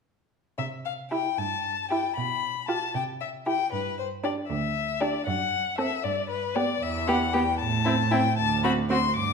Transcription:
0.58 1.22 C3 soft
0.58 0.66 E5 medium
0.85 0.93 F5 medium
1.11 1.31 E4 soft
1.11 1.31 G4 soft
1.11 1.40 G5 medium
1.38 2.01 G2 soft
1.38 1.91 A5 medium
1.91 2.11 E4 soft
1.91 2.10 G4 soft
1.91 2.16 G5 medium
2.17 2.79 B2 soft
2.17 2.67 B5 medium
2.68 2.88 F4 soft
2.68 2.88 G4 soft
2.68 2.94 A5 medium
2.94 3.57 C3 medium
2.94 3.03 G5 medium
3.21 3.29 E5 soft
3.46 3.66 E4 soft
3.46 3.66 G4 soft
3.46 3.72 G5 medium
3.72 4.34 G2 medium
3.72 3.98 B4 medium
3.99 4.07 C5 medium
4.24 4.43 D4 soft
4.24 4.44 G4 soft
4.24 4.32 D5 medium
4.49 5.11 D2 medium
4.49 5.02 E5 medium
5.01 5.20 D4 soft
5.01 5.20 G4 soft
5.01 5.26 D5 medium
5.26 5.88 F#2 soft
5.26 5.77 F#5 medium
5.78 5.97 C4 soft
5.78 5.97 A4 soft
5.78 6.05 E5 medium
6.04 6.66 G2 medium
6.04 6.29 D5 medium
6.30 6.57 B4 medium
6.55 6.75 B3 soft
6.55 6.75 G4 soft
6.55 6.84 D5 medium
6.82 7.47 E2 medium
6.82 7.09 E5 medium
7.07 7.16 B3 soft
7.07 7.15 G4 soft
7.07 7.35 F#5 medium
7.33 7.42 B3 soft
7.33 7.41 G4 soft
7.33 7.59 G5 medium
7.60 8.25 A2 medium
7.60 8.13 A5 medium
7.85 7.94 C4 soft
7.85 7.93 E4 soft
8.11 8.21 C4 soft
8.11 8.19 E4 soft
8.11 8.37 G5 medium
8.38 9.03 D2 medium
8.38 8.63 A5 medium
8.64 8.72 C4 soft
8.64 8.72 F#4 soft
8.64 8.72 B5 medium
8.90 8.98 C4 soft
8.90 8.99 F#4 soft
8.90 9.15 C6 medium
9.16 9.33 G2 medium
9.16 9.33 D6 medium

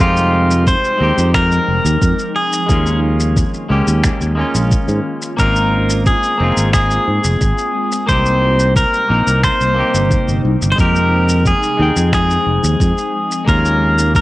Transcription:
0.00 0.74 F2 medium
0.00 2.67 F3 medium
0.00 0.95 G#3 medium
0.00 2.67 G#3 medium
0.00 0.96 C4 medium
0.00 2.67 C4 medium
0.00 0.97 D#4 medium
0.00 2.67 D#4 medium
0.00 0.70 F4 medium
0.00 0.98 G4 medium
0.00 shaker soft
0.17 shaker soft
0.51 shaker medium
0.67 1.31 C5 loud
0.67 kick loud
0.67 shaker soft
0.84 shaker soft
0.98 1.11 D#2 medium
0.98 2.64 G#3 medium
0.98 2.65 C4 medium
0.98 2.66 D#4 medium
1.03 2.66 G4 medium
1.18 1.58 F2 medium
1.18 shaker medium
1.34 2.39 A#4 medium
1.34 finger snap medium
1.34 kick loud
1.34 shaker medium
1.52 shaker soft
1.68 1.79 F1 medium
1.85 1.95 D#2 medium
1.85 shaker medium
2.02 2.12 F2 loud
2.02 kick loud
2.02 shaker medium
2.19 shaker soft
2.36 2.99 G#4 medium
2.53 shaker medium
2.66 3.43 D#2 medium
2.66 5.36 D#3 medium
2.66 3.65 G#3 medium
2.66 5.36 G#3 medium
2.66 3.66 A#3 medium
2.66 5.36 C#4 medium
2.66 3.67 C#4 medium
2.66 8.05 F4 medium
2.66 kick loud
2.66 shaker soft
2.71 3.67 F4 medium
2.86 shaker soft
3.20 shaker medium
3.37 kick loud
3.37 shaker medium
3.54 shaker soft
3.69 3.81 C#2 medium
3.69 4.33 G#3 medium
3.69 4.34 A#3 medium
3.69 4.34 C#4 medium
3.69 4.34 G4 medium
3.87 4.08 D#2 medium
3.87 shaker medium
4.04 finger snap medium
4.04 kick loud
4.04 shaker medium
4.21 4.42 D#2 medium
4.21 shaker soft
4.35 5.34 G#3 medium
4.35 5.35 A#3 medium
4.35 5.35 C#4 medium
4.41 5.36 F4 medium
4.55 4.76 A#1 medium
4.55 shaker medium
4.71 kick loud
4.71 shaker medium
4.88 4.99 G#2 medium
4.88 shaker soft
5.22 shaker medium
5.37 6.13 G#1 medium
5.37 8.06 G#3 medium
5.37 6.35 A#3 medium
5.37 6.36 C4 medium
5.37 8.06 C4 medium
5.37 6.36 D#4 medium
5.37 6.03 A#4 medium
5.37 kick loud
5.37 shaker medium
5.42 6.37 F4 loud
5.56 shaker soft
5.90 shaker medium
6.06 6.73 G#4 medium
6.06 kick loud
6.06 shaker medium
6.23 shaker soft
6.38 6.51 F1 medium
6.38 8.03 A#3 medium
6.38 8.04 C4 medium
6.38 8.05 D#4 medium
6.43 8.06 F4 medium
6.57 6.97 G#1 medium
6.57 shaker medium
6.73 8.13 G#4 medium
6.73 finger snap medium
6.73 kick loud
6.73 shaker medium
6.91 shaker soft
7.08 7.18 G#2 medium
7.24 7.35 F1 medium
7.24 shaker medium
7.41 7.52 G#1 loud
7.41 kick loud
7.41 shaker medium
7.58 shaker soft
7.92 shaker medium
8.07 8.83 C2 medium
8.07 10.76 C3 medium
8.07 10.76 G3 medium
8.07 9.05 A#3 medium
8.07 10.76 A#3 medium
8.07 9.05 C4 medium
8.07 13.44 D#4 medium
8.07 9.06 D#4 medium
8.07 8.76 C5 loud
8.07 kick loud
8.07 shaker medium
8.12 9.07 G4 medium
8.26 shaker soft
8.59 shaker medium
8.76 9.44 A#4 medium
8.76 kick loud
8.76 shaker medium
8.94 shaker soft
9.09 9.20 A#1 medium
9.09 9.72 A#3 medium
9.09 9.73 C4 medium
9.09 9.73 D#4 medium
9.09 9.74 A#4 medium
9.27 9.48 C2 medium
9.27 shaker medium
9.43 10.41 C5 medium
9.43 finger snap medium
9.43 kick loud
9.43 shaker medium
9.61 9.81 C2 medium
9.61 shaker soft
9.75 10.73 A#3 medium
9.75 10.74 C4 medium
9.75 10.75 D#4 medium
9.80 10.76 G4 medium
9.94 10.15 G1 medium
9.94 shaker medium
10.11 kick loud
10.11 shaker medium
10.28 10.38 G1 medium
10.28 shaker soft
10.45 10.55 C2 medium
10.62 10.72 G1 medium
10.62 shaker medium
10.72 11.74 G#3 medium
10.72 10.79 C5 medium
10.77 11.52 F2 medium
10.77 13.45 F3 medium
10.77 14.21 G#3 medium
10.77 11.75 C4 medium
10.77 13.45 C4 medium
10.77 11.76 D#4 medium
10.77 11.77 G4 loud
10.77 11.49 A#4 medium
10.77 kick loud
10.77 shaker soft
10.96 shaker soft
11.29 shaker medium
11.46 12.13 G#4 medium
11.46 kick loud
11.46 shaker soft
11.63 shaker soft
11.77 11.90 D#2 medium
11.77 13.43 G#3 medium
11.77 13.43 C4 medium
11.77 13.44 D#4 medium
11.82 13.45 G5 medium
11.96 12.37 F2 medium
11.96 shaker medium
12.13 13.53 G#4 medium
12.13 finger snap medium
12.13 kick loud
12.13 shaker medium
12.30 shaker soft
12.46 12.57 F1 medium
12.63 12.74 D#2 medium
12.63 shaker medium
12.80 12.91 F2 loud
12.80 kick loud
12.80 shaker medium
12.98 shaker soft
13.31 shaker medium
13.45 14.21 D#2 medium
13.45 14.21 G#3 medium
13.45 14.21 A#3 medium
13.45 14.21 C#4 medium
13.45 14.15 A#4 medium
13.45 kick medium
13.45 shaker soft
13.50 14.21 F4 medium
13.65 shaker soft
13.99 shaker medium
14.15 14.21 A#4 medium
14.15 kick medium
14.15 shaker soft

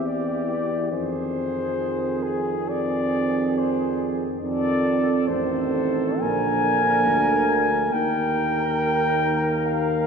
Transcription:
0.00 0.91 E2 medium
0.00 0.92 E3 medium
0.00 0.75 C4 soft
0.00 0.91 G4 medium
0.06 0.91 D5 medium
0.91 4.26 F2 medium
0.91 4.42 D#3 medium
0.91 4.38 C4 medium
0.91 4.28 G#4 medium
0.91 2.25 C5 medium
2.23 2.71 G#4 medium
2.70 3.60 D5 medium
3.58 4.16 C5 medium
4.42 5.31 F2 medium
4.42 5.11 D#3 medium
4.42 5.25 C4 medium
4.42 5.26 A4 medium
4.42 5.30 D5 loud
5.28 6.22 A1 medium
5.28 6.21 D#3 medium
5.28 6.19 C4 medium
5.28 6.24 A4 medium
5.28 6.21 C5 medium
6.19 7.09 A#1 medium
6.19 7.93 D3 medium
6.19 7.90 A#3 medium
6.19 7.94 A#4 medium
6.19 7.94 G#5 loud
7.08 7.94 D2 medium
7.93 10.07 D#2 medium
7.93 10.07 D#3 medium
7.93 10.07 A#3 medium
7.93 10.07 A#4 medium
7.93 9.66 G5 loud
9.67 10.07 F5 medium

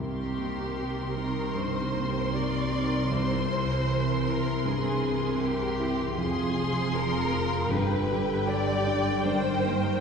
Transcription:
0.00 1.53 C2 soft
0.00 6.13 C2 soft
0.00 6.13 C3 soft
0.00 3.06 D#3 soft
0.00 1.12 G4 medium
0.00 6.13 A#4 soft
0.00 6.14 C6 soft
0.38 1.02 A#3 soft
0.78 1.41 G4 soft
1.16 1.80 D#4 soft
1.16 1.55 A#4 medium
1.55 2.18 G2 soft
1.55 2.34 C5 medium
1.94 2.56 A#3 soft
2.34 2.95 G4 soft
2.34 3.11 D5 medium
2.72 3.10 D#4 soft
3.10 4.60 C2 soft
3.10 6.13 E3 soft
3.10 4.26 C5 medium
3.48 4.10 C4 soft
3.88 4.49 A#4 soft
4.27 4.87 E4 soft
4.27 4.65 A#4 medium
4.65 5.25 G2 soft
4.65 5.39 G#4 medium
5.03 5.63 C4 soft
5.41 6.17 G4 medium
5.41 6.02 A#4 soft
5.79 6.17 E4 soft
6.17 7.71 F1 medium
6.17 7.71 F2 medium
6.17 7.67 F2 medium
6.17 7.68 F3 medium
6.17 7.71 G#4 medium
6.17 6.93 G#4 medium
6.17 7.68 C6 medium
6.56 7.17 C4 soft
6.94 7.55 G#4 soft
6.94 7.71 A#4 medium
7.33 7.71 F4 soft
7.70 10.00 G1 medium
7.70 9.21 G2 medium
7.70 10.00 G2 medium
7.70 9.25 D3 medium
7.70 9.22 G4 medium
7.70 8.48 B4 medium
7.70 10.00 G5 medium
8.10 8.71 G3 soft
8.48 9.09 G4 soft
8.48 9.25 D5 medium
8.87 9.25 D4 soft
9.25 10.00 G2 soft
9.25 10.00 D#3 medium
9.25 10.00 A#4 medium
9.25 10.00 C5 medium
9.64 10.00 A#3 soft

